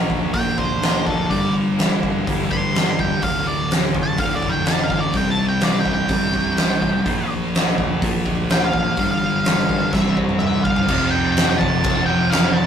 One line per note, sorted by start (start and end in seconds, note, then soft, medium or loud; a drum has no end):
0.00 0.10 A#1 loud
0.00 0.32 A#2 medium
0.00 0.81 A#2 medium
0.00 0.33 F3 medium
0.00 0.82 F3 medium
0.00 0.36 A#3 loud
0.00 0.58 A#3 medium
0.00 0.58 D4 medium
0.00 0.56 F4 loud
0.00 0.55 A#4 loud
0.10 0.33 D2 medium
0.10 kick medium
0.33 1.29 A#2 medium
0.33 0.57 A#2 loud
0.33 1.29 F3 medium
0.33 1.30 A#3 medium
0.33 0.58 G5 medium
0.33 kick loud
0.33 open hi-hat medium
0.57 1.03 D2 loud
0.57 0.79 A#3 medium
0.57 0.81 D4 medium
0.57 0.81 F4 medium
0.57 0.82 A#4 medium
0.57 1.05 C5 medium
0.57 kick medium
0.80 1.06 A#3 medium
0.80 1.06 D4 medium
0.80 1.05 F4 medium
0.80 1.03 A#4 medium
0.80 snare loud
0.80 open hi-hat medium
1.05 1.29 D2 medium
1.05 1.30 A#3 medium
1.05 1.30 D4 medium
1.05 1.29 F4 medium
1.05 1.29 A4 medium
1.05 1.28 A#4 medium
1.05 kick medium
1.29 1.99 G1 medium
1.29 1.75 G2 medium
1.29 2.25 G2 medium
1.29 1.76 D3 loud
1.29 2.25 D3 loud
1.29 1.55 G3 medium
1.29 2.25 G3 loud
1.29 1.54 A#3 loud
1.29 1.53 D4 loud
1.29 1.52 G4 medium
1.29 1.53 D5 loud
1.29 kick medium
1.29 open hi-hat soft
1.53 1.76 G3 medium
1.53 1.77 A#3 medium
1.53 1.77 D4 medium
1.53 1.78 G4 medium
1.76 2.73 G2 medium
1.76 2.74 D3 loud
1.76 2.51 G3 medium
1.76 2.50 A#3 loud
1.76 2.49 D4 loud
1.76 2.48 G4 loud
1.76 snare loud
1.76 open hi-hat medium
2.03 2.25 G2 medium
2.03 kick medium
2.27 2.50 D2 medium
2.27 3.21 G2 medium
2.27 3.22 D3 medium
2.27 3.22 G3 medium
2.27 kick loud
2.27 open hi-hat medium
2.49 2.96 G2 medium
2.49 2.72 G3 medium
2.49 2.72 A#3 medium
2.49 2.73 D4 medium
2.49 2.74 G4 medium
2.49 2.98 C6 medium
2.49 kick medium
2.73 2.99 G3 medium
2.73 2.98 A#3 medium
2.73 2.97 D4 medium
2.73 2.96 G4 medium
2.73 snare loud
2.73 open hi-hat medium
2.97 3.10 E1 medium
2.97 3.22 G3 medium
2.97 3.21 A#3 medium
2.97 3.21 D4 medium
2.97 3.20 G4 medium
2.97 3.22 G5 medium
2.97 kick medium
3.22 3.94 D1 loud
3.22 4.16 D2 medium
3.22 4.17 A2 medium
3.22 4.18 D3 loud
3.22 3.46 F5 medium
3.22 kick medium
3.22 open hi-hat medium
3.47 3.70 D5 medium
3.71 snare loud
3.71 open hi-hat medium
3.84 snare soft
3.94 4.17 F1 medium
3.94 kick medium
4.03 4.18 A5 medium
4.17 5.12 D2 medium
4.17 4.41 D2 loud
4.17 5.13 A2 medium
4.17 5.13 D3 medium
4.17 4.34 F5 medium
4.17 kick loud
4.17 open hi-hat medium
4.36 4.50 D5 medium
4.42 4.87 F1 loud
4.42 kick medium
4.49 4.65 G5 medium
4.66 4.83 A5 medium
4.66 snare loud
4.66 open hi-hat medium
4.83 5.00 F5 medium
4.90 5.12 A1 medium
4.90 kick medium
5.00 5.15 D5 medium
5.13 5.82 C2 medium
5.13 6.08 C3 loud
5.13 6.09 G3 loud
5.13 6.12 C4 loud
5.13 kick loud
5.13 open hi-hat soft
5.17 5.30 G5 medium
5.30 5.46 A5 medium
5.49 5.63 G5 medium
5.61 5.78 D5 medium
5.61 snare loud
5.61 open hi-hat medium
5.75 snare soft
5.80 5.92 G5 medium
5.86 6.08 C2 medium
5.86 kick medium
5.93 7.33 G5 medium
6.08 6.32 G1 medium
6.08 7.04 C3 medium
6.08 7.05 G3 medium
6.08 7.05 C4 medium
6.08 kick loud
6.08 open hi-hat medium
6.34 6.79 C2 loud
6.34 kick medium
6.57 snare loud
6.57 open hi-hat medium
6.82 6.93 A1 medium
6.82 kick medium
7.05 7.78 A#1 loud
7.05 8.00 A#2 loud
7.05 8.00 F3 loud
7.05 8.01 A#3 loud
7.05 kick loud
7.05 open hi-hat medium
7.55 snare loud
7.55 open hi-hat medium
7.68 snare soft
7.78 8.00 D2 medium
7.78 kick medium
8.02 8.96 A#2 medium
8.02 8.24 A#2 loud
8.02 8.96 F3 medium
8.02 8.96 A#3 medium
8.02 kick loud
8.02 open hi-hat medium
8.26 8.70 D2 loud
8.26 kick medium
8.50 8.62 G5 medium
8.50 snare loud
8.50 open hi-hat medium
8.65 9.10 F5 medium
8.73 8.96 A1 medium
8.73 kick medium
8.97 9.65 G1 loud
8.97 9.91 G2 medium
8.97 9.92 D3 loud
8.97 9.92 G3 loud
8.97 kick loud
8.97 open hi-hat medium
9.11 9.91 F5 medium
9.45 snare loud
9.45 open hi-hat medium
9.59 snare soft
9.69 9.91 G2 medium
9.69 kick medium
9.92 10.15 C2 medium
9.92 10.87 C3 medium
9.92 10.87 G3 medium
9.92 10.88 C4 loud
9.92 10.16 E5 loud
9.92 kick loud
9.92 snare medium
10.17 10.39 C3 medium
10.17 kick medium
10.29 mid tom medium
10.39 10.62 A1 medium
10.39 10.63 E5 medium
10.39 mid tom medium
10.64 10.87 G1 medium
10.64 11.08 F5 medium
10.64 kick loud
10.76 floor tom medium
10.88 11.56 F1 loud
10.88 12.06 F2 loud
10.88 12.07 C3 loud
10.88 12.08 F3 loud
10.88 kick loud
10.88 crash loud
10.88 crash medium
11.11 11.31 G5 medium
11.32 11.49 G5 medium
11.37 snare loud
11.37 crash medium
11.50 11.58 G5 medium
11.50 snare soft
11.58 11.83 F1 medium
11.58 12.03 A5 medium
11.58 kick medium
11.84 12.66 F1 loud
11.84 kick loud
11.84 crash medium
12.06 12.31 C3 medium
12.06 12.33 F3 loud
12.06 12.32 G5 medium
12.10 12.31 F2 medium
12.30 12.66 F2 medium
12.30 12.66 C3 medium
12.30 12.66 F3 loud
12.30 12.56 F5 medium
12.30 snare loud
12.30 crash medium
12.53 12.66 A5 medium